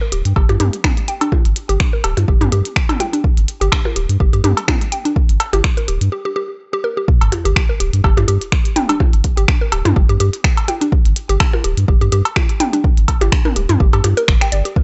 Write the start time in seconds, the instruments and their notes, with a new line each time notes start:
0.01 synth arpeggio sound A#4
0.12 sub bass D1, synth arpeggio sound G4, closed hi-hat
0.25 sub bass G2, closed hi-hat
0.36 sub bass G1, synth arpeggio sound G4, kick, cowbell
0.49 sub bass G2, synth arpeggio sound G4, closed hi-hat, percussion blips
0.60 sub bass G2, synth arpeggio sound G4, closed hi-hat, mid tom
0.73 closed hi-hat
0.84 finger snap, kick, mid tom
0.97 closed hi-hat
1.08 synth arpeggio sound G5, closed hi-hat
1.21 synth arpeggio sound D4, closed hi-hat, cowbell
1.32 kick, percussion blips
1.45 sub bass G1, closed hi-hat
1.56 closed hi-hat
1.69 sub bass G1, synth arpeggio sound G4, closed hi-hat
1.80 finger snap, kick
1.93 synth arpeggio sound A#4
2.04 sub bass D1, synth arpeggio sound G4, closed hi-hat, cowbell
2.17 sub bass G2, closed hi-hat, percussion blips
2.28 sub bass G1, synth arpeggio sound G4, kick
2.41 sub bass G2, synth arpeggio sound G4, closed hi-hat, mid tom
2.52 sub bass G2, synth arpeggio sound G4, closed hi-hat
2.65 closed hi-hat
2.76 finger snap, kick
2.89 closed hi-hat, mid tom, cowbell
3.00 synth arpeggio sound G5, closed hi-hat, percussion blips
3.13 synth arpeggio sound D4, closed hi-hat
3.24 kick
3.37 sub bass G1, closed hi-hat
3.48 closed hi-hat
3.61 sub bass G1, synth arpeggio sound G4, closed hi-hat
3.72 finger snap, kick, cowbell
3.85 synth arpeggio sound A#4, percussion blips
3.96 sub bass D1, synth arpeggio sound G4, closed hi-hat
4.09 sub bass G2, closed hi-hat
4.20 sub bass G1, synth arpeggio sound G4, kick
4.33 sub bass G2, synth arpeggio sound G4, closed hi-hat
4.44 sub bass G2, synth arpeggio sound G4, closed hi-hat, mid tom
4.57 closed hi-hat, cowbell
4.68 finger snap, kick, mid tom, percussion blips
4.81 closed hi-hat
4.92 synth arpeggio sound G5, closed hi-hat
5.05 synth arpeggio sound D4, closed hi-hat
5.16 kick
5.29 sub bass G1, closed hi-hat
5.40 closed hi-hat, cowbell
5.53 sub bass G1, synth arpeggio sound G4, closed hi-hat, percussion blips
5.64 finger snap, kick
5.77 synth arpeggio sound A#4, closed hi-hat
5.88 sub bass D1, synth arpeggio sound G4, closed hi-hat
6.01 sub bass G2, closed hi-hat
6.12 synth arpeggio sound G4
6.25 synth arpeggio sound G4
6.36 synth arpeggio sound G4
6.73 synth arpeggio sound G4
6.84 synth arpeggio sound A#4
6.97 synth arpeggio sound G4
7.08 kick, sub drop
7.21 sub bass G1, closed hi-hat, cowbell
7.32 closed hi-hat, percussion blips
7.45 sub bass G1, synth arpeggio sound G4, closed hi-hat
7.56 finger snap, kick
7.69 synth arpeggio sound A#4
7.80 sub bass D1, synth arpeggio sound G4, closed hi-hat
7.93 sub bass G2, closed hi-hat
8.04 sub bass G1, synth arpeggio sound G4, kick, cowbell
8.17 sub bass G2, synth arpeggio sound G4, closed hi-hat, percussion blips
8.28 sub bass G2, synth arpeggio sound G4, closed hi-hat
8.41 closed hi-hat
8.52 finger snap, kick
8.65 closed hi-hat
8.76 synth arpeggio sound G5, closed hi-hat, mid tom
8.89 synth arpeggio sound D4, closed hi-hat, cowbell
9.00 kick, percussion blips
9.13 sub bass G1, closed hi-hat
9.24 kick, closed hi-hat
9.37 sub bass G1, synth arpeggio sound G4, closed hi-hat
9.48 finger snap, kick
9.61 synth arpeggio sound A#4
9.72 sub bass D1, synth arpeggio sound G4, closed hi-hat, cowbell
9.85 sub bass G2, closed hi-hat, mid tom, percussion blips
9.96 sub bass G1, synth arpeggio sound G4, kick
10.09 sub bass G2, synth arpeggio sound G4, closed hi-hat
10.20 sub bass G2, synth arpeggio sound G4, closed hi-hat
10.33 closed hi-hat
10.44 finger snap, kick
10.57 closed hi-hat, cowbell
10.68 synth arpeggio sound G5, closed hi-hat, percussion blips
10.81 synth arpeggio sound D4, closed hi-hat
10.92 kick
11.05 sub bass G1, closed hi-hat
11.16 closed hi-hat
11.29 sub bass G1, synth arpeggio sound G4, closed hi-hat
11.40 finger snap, kick, cowbell
11.53 synth arpeggio sound A#4, percussion blips
11.64 sub bass D1, synth arpeggio sound G4, closed hi-hat
11.77 sub bass G2, closed hi-hat
11.88 sub bass G1, synth arpeggio sound G4, kick
12.01 sub bass G2, synth arpeggio sound G4, closed hi-hat
12.12 sub bass G2, synth arpeggio sound G4, closed hi-hat
12.25 closed hi-hat, cowbell
12.36 finger snap, kick, percussion blips
12.49 closed hi-hat
12.60 synth arpeggio sound G5, closed hi-hat, mid tom
12.73 synth arpeggio sound D4, closed hi-hat
12.84 kick
12.97 sub bass G1, closed hi-hat
13.08 kick, closed hi-hat, cowbell
13.21 sub bass G1, synth arpeggio sound G4, closed hi-hat, percussion blips
13.32 finger snap, kick
13.45 synth arpeggio sound A#4, mid tom
13.56 sub bass D1, synth arpeggio sound G4, closed hi-hat
13.69 sub bass G2, closed hi-hat, mid tom
13.80 sub bass G1, synth arpeggio sound G4, kick
13.93 sub bass G2, synth arpeggio sound G4, closed hi-hat, cowbell
14.04 sub bass G2, synth arpeggio sound G4, closed hi-hat, percussion blips
14.17 synth arpeggio sound A#4, closed hi-hat
14.28 sub bass G1, finger snap, kick
14.41 synth arpeggio sound G5, finger snap, closed hi-hat
14.52 sub bass G1, synth arpeggio sound D5, closed hi-hat
14.65 synth arpeggio sound G4, closed hi-hat
14.76 kick